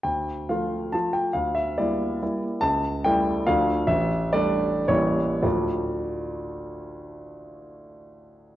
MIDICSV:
0, 0, Header, 1, 2, 480
1, 0, Start_track
1, 0, Key_signature, -1, "minor"
1, 0, Tempo, 433213
1, 57, Time_signature, 3, 2, 24, 8
1, 2457, Tempo, 417246
1, 4377, Tempo, 468019
1, 4857, Tempo, 541028
1, 6777, Tempo, 525855
1, 8640, End_track
2, 0, Start_track
2, 0, Title_t, "Grand piano"
2, 0, Program_c, 0, 0
2, 37, Note_on_c, 0, 79, 73
2, 45, Note_on_c, 0, 38, 45
2, 298, Control_c, 0, 64, 127
2, 534, Note_off_c, 0, 38, 0
2, 545, Note_off_c, 0, 79, 0
2, 547, Note_on_c, 0, 77, 57
2, 550, Note_on_c, 0, 53, 43
2, 557, Note_on_c, 0, 57, 46
2, 566, Note_on_c, 0, 65, 47
2, 989, Note_off_c, 0, 53, 0
2, 992, Note_off_c, 0, 57, 0
2, 997, Note_off_c, 0, 65, 0
2, 1024, Note_on_c, 0, 81, 67
2, 1032, Note_off_c, 0, 77, 0
2, 1035, Note_on_c, 0, 53, 38
2, 1042, Note_on_c, 0, 65, 41
2, 1043, Note_on_c, 0, 57, 35
2, 1050, Control_c, 0, 64, 0
2, 1253, Note_on_c, 0, 79, 70
2, 1260, Note_off_c, 0, 81, 0
2, 1452, Note_off_c, 0, 53, 0
2, 1455, Note_off_c, 0, 65, 0
2, 1456, Note_off_c, 0, 57, 0
2, 1476, Note_on_c, 0, 77, 66
2, 1486, Note_on_c, 0, 38, 51
2, 1490, Note_off_c, 0, 79, 0
2, 1714, Note_on_c, 0, 76, 70
2, 1721, Control_c, 0, 64, 127
2, 1723, Note_off_c, 0, 77, 0
2, 1960, Note_off_c, 0, 38, 0
2, 1969, Note_on_c, 0, 74, 63
2, 1970, Note_off_c, 0, 76, 0
2, 1974, Note_on_c, 0, 55, 49
2, 1978, Note_on_c, 0, 58, 46
2, 1983, Note_on_c, 0, 64, 50
2, 2411, Note_off_c, 0, 55, 0
2, 2413, Note_off_c, 0, 58, 0
2, 2416, Note_off_c, 0, 64, 0
2, 2464, Note_on_c, 0, 55, 44
2, 2467, Note_on_c, 0, 64, 45
2, 2470, Note_on_c, 0, 58, 41
2, 2472, Control_c, 0, 64, 0
2, 2692, Note_off_c, 0, 74, 0
2, 2887, Note_off_c, 0, 55, 0
2, 2888, Note_off_c, 0, 64, 0
2, 2890, Note_off_c, 0, 58, 0
2, 2907, Note_on_c, 0, 81, 83
2, 2917, Note_on_c, 0, 37, 59
2, 3143, Control_c, 0, 64, 127
2, 3388, Note_off_c, 0, 37, 0
2, 3398, Note_off_c, 0, 81, 0
2, 3410, Note_on_c, 0, 79, 85
2, 3420, Note_on_c, 0, 57, 59
2, 3421, Note_on_c, 0, 55, 61
2, 3425, Note_on_c, 0, 64, 61
2, 3860, Note_off_c, 0, 57, 0
2, 3861, Note_off_c, 0, 55, 0
2, 3863, Note_off_c, 0, 64, 0
2, 3894, Note_on_c, 0, 77, 83
2, 3896, Note_on_c, 0, 38, 66
2, 3898, Note_on_c, 0, 53, 46
2, 3901, Note_off_c, 0, 79, 0
2, 3906, Note_on_c, 0, 57, 50
2, 3916, Control_c, 0, 64, 0
2, 3917, Note_on_c, 0, 62, 46
2, 4125, Control_c, 0, 64, 127
2, 4331, Note_off_c, 0, 53, 0
2, 4334, Note_off_c, 0, 57, 0
2, 4340, Note_off_c, 0, 62, 0
2, 4359, Note_on_c, 0, 76, 87
2, 4361, Note_off_c, 0, 38, 0
2, 4362, Note_on_c, 0, 33, 69
2, 4374, Note_off_c, 0, 77, 0
2, 4392, Control_c, 0, 64, 0
2, 4583, Control_c, 0, 64, 127
2, 4828, Note_on_c, 0, 74, 91
2, 4836, Note_off_c, 0, 33, 0
2, 4838, Note_on_c, 0, 55, 63
2, 4843, Note_on_c, 0, 57, 61
2, 4849, Note_off_c, 0, 76, 0
2, 4850, Note_on_c, 0, 62, 70
2, 5286, Note_off_c, 0, 55, 0
2, 5288, Note_off_c, 0, 57, 0
2, 5292, Note_off_c, 0, 62, 0
2, 5318, Note_off_c, 0, 74, 0
2, 5322, Note_on_c, 0, 73, 78
2, 5325, Note_on_c, 0, 33, 69
2, 5325, Note_on_c, 0, 55, 50
2, 5333, Note_on_c, 0, 58, 49
2, 5335, Note_on_c, 0, 64, 50
2, 5341, Control_c, 0, 64, 0
2, 5576, Control_c, 0, 64, 127
2, 5790, Note_off_c, 0, 55, 0
2, 5794, Note_off_c, 0, 58, 0
2, 5794, Note_off_c, 0, 64, 0
2, 5801, Note_on_c, 0, 38, 58
2, 5805, Note_on_c, 0, 74, 60
2, 5806, Note_on_c, 0, 53, 51
2, 5807, Note_on_c, 0, 45, 52
2, 5809, Note_on_c, 0, 57, 47
2, 5810, Note_off_c, 0, 33, 0
2, 5816, Note_on_c, 0, 62, 49
2, 5816, Note_on_c, 0, 65, 52
2, 5824, Note_off_c, 0, 73, 0
2, 5839, Control_c, 0, 64, 0
2, 6014, Control_c, 0, 64, 127
2, 8640, Note_off_c, 0, 38, 0
2, 8640, Note_off_c, 0, 45, 0
2, 8640, Note_off_c, 0, 53, 0
2, 8640, Note_off_c, 0, 57, 0
2, 8640, Note_off_c, 0, 62, 0
2, 8640, Note_off_c, 0, 65, 0
2, 8640, Note_off_c, 0, 74, 0
2, 8640, End_track
0, 0, End_of_file